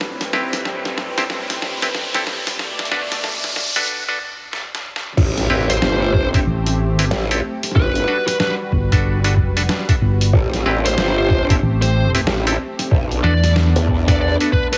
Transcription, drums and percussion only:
0.01 snare medium
0.21 snare medium
0.21 closed hi-hat soft
0.33 snare loud
0.53 snare medium
0.53 closed hi-hat medium
0.65 snare loud
0.85 snare medium
0.98 snare medium
1.18 snare medium
1.18 closed hi-hat medium
1.30 snare medium
1.50 snare medium
1.50 closed hi-hat medium
1.62 snare medium
1.82 snare medium
1.82 closed hi-hat medium
1.95 snare loud
2.14 snare medium
2.14 closed hi-hat medium
2.27 snare loud
2.47 snare medium
2.47 closed hi-hat medium
2.59 snare loud
2.79 snare medium
2.85 closed hi-hat soft
2.92 snare loud
3.12 snare medium
3.12 closed hi-hat medium
3.24 snare loud
3.44 snare medium
3.56 snare loud
3.76 snare medium
3.76 closed hi-hat medium
3.78 closed hi-hat medium
3.85 closed hi-hat soft
4.53 snare medium
4.75 snare medium
4.96 snare loud
5.17 kick loud
5.17 crash loud
5.38 snare soft
5.38 closed hi-hat soft
5.70 closed hi-hat medium
5.82 snare loud
6.14 kick medium
6.34 kick loud
6.34 closed hi-hat medium
6.66 snare soft
6.66 closed hi-hat medium
6.99 closed hi-hat medium
7.11 snare loud
7.31 closed hi-hat medium
7.63 snare soft
7.63 closed hi-hat medium
7.71 snare soft
7.75 kick loud
7.82 snare soft
7.95 closed hi-hat soft
8.28 snare soft
8.28 closed hi-hat medium
8.40 snare loud
8.72 kick medium
8.92 kick loud
8.92 closed hi-hat medium
9.24 closed hi-hat medium
9.37 kick medium
9.57 closed hi-hat medium
9.69 snare loud
9.89 kick loud
9.89 closed hi-hat medium
10.21 closed hi-hat medium
10.33 kick loud
10.54 snare soft
10.54 closed hi-hat soft
10.86 closed hi-hat medium
10.98 snare loud
11.30 kick medium
11.50 kick loud
11.50 closed hi-hat medium
11.82 snare soft
11.82 closed hi-hat medium
12.15 closed hi-hat medium
12.27 snare loud
12.47 closed hi-hat medium
12.79 snare medium
12.79 closed hi-hat medium
12.91 kick loud
13.11 closed hi-hat soft
13.44 snare soft
13.44 closed hi-hat medium
13.56 snare loud
13.76 closed hi-hat soft
13.88 kick medium
14.08 kick loud
14.08 closed hi-hat medium
14.40 closed hi-hat medium
14.53 kick medium
14.73 closed hi-hat medium

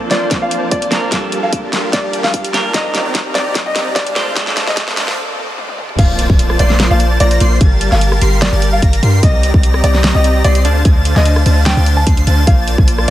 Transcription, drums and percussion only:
0.11 snare medium
0.11 closed hi-hat medium
0.31 kick loud
0.31 snare medium
0.31 closed hi-hat medium
0.51 closed hi-hat medium
0.71 kick medium
0.71 closed hi-hat medium
0.82 closed hi-hat medium
0.92 snare medium
0.92 closed hi-hat medium
1.12 kick loud
1.12 snare medium
1.12 closed hi-hat medium
1.32 closed hi-hat medium
1.53 kick medium
1.53 closed hi-hat medium
1.73 snare medium
1.73 closed hi-hat medium
1.93 kick loud
1.93 snare medium
1.93 closed hi-hat medium
2.13 closed hi-hat medium
2.24 snare medium
2.34 kick medium
2.34 closed hi-hat medium
2.44 closed hi-hat medium
2.54 snare medium
2.54 closed hi-hat medium
2.74 kick loud
2.74 snare medium
2.74 closed hi-hat medium
2.95 snare medium
2.95 closed hi-hat medium
3.15 kick loud
3.15 snare medium
3.15 closed hi-hat medium
3.35 snare medium
3.35 closed hi-hat medium
3.55 kick loud
3.55 snare medium
3.55 closed hi-hat medium
3.76 snare medium
3.76 closed hi-hat medium
3.96 kick medium
3.96 snare medium
3.96 closed hi-hat medium
4.07 closed hi-hat medium
4.16 snare medium
4.16 closed hi-hat medium
4.36 kick loud
4.36 snare medium
4.36 closed hi-hat medium
4.47 snare medium
4.57 snare medium
4.57 closed hi-hat medium
4.67 snare medium
4.77 kick loud
4.77 snare loud
4.77 closed hi-hat medium
4.88 snare medium
4.97 snare loud
4.97 closed hi-hat medium
5.08 snare medium
5.58 high tom medium
5.69 high tom medium
5.78 mid tom medium
5.89 mid tom medium
5.99 kick loud
5.99 closed hi-hat medium
5.99 crash loud
6.19 closed hi-hat medium
6.30 kick loud
6.39 closed hi-hat medium
6.50 cross-stick medium
6.59 closed hi-hat medium
6.70 snare soft
6.80 snare loud
6.80 closed hi-hat medium
7.00 closed hi-hat medium
7.20 closed hi-hat medium
7.31 closed hi-hat medium
7.40 closed hi-hat medium
7.61 kick loud
7.61 closed hi-hat medium
7.81 closed hi-hat medium
7.92 snare soft
8.01 closed hi-hat medium
8.12 cross-stick medium
8.22 closed hi-hat medium
8.42 snare loud
8.42 closed hi-hat medium
8.62 closed hi-hat medium
8.82 kick loud
8.82 closed hi-hat medium
8.93 closed hi-hat medium
9.03 closed hi-hat medium
9.23 kick loud
9.23 closed hi-hat medium
9.43 closed hi-hat medium
9.54 kick loud
9.63 closed hi-hat medium
9.74 cross-stick medium
9.84 closed hi-hat medium
9.94 snare soft
10.04 snare loud
10.04 closed hi-hat medium
10.24 closed hi-hat medium
10.44 closed hi-hat medium
10.55 closed hi-hat medium
10.65 closed hi-hat medium
10.85 kick loud
10.85 closed hi-hat medium
11.05 closed hi-hat medium
11.16 snare soft
11.25 closed hi-hat medium
11.36 cross-stick medium
11.46 closed hi-hat medium
11.66 snare loud
11.66 closed hi-hat medium
11.86 closed hi-hat medium
12.07 kick loud
12.07 closed hi-hat medium
12.17 closed hi-hat medium
12.27 closed hi-hat medium
12.47 kick loud
12.47 closed hi-hat medium
12.68 closed hi-hat medium
12.78 kick loud
12.88 closed hi-hat medium
12.98 cross-stick medium

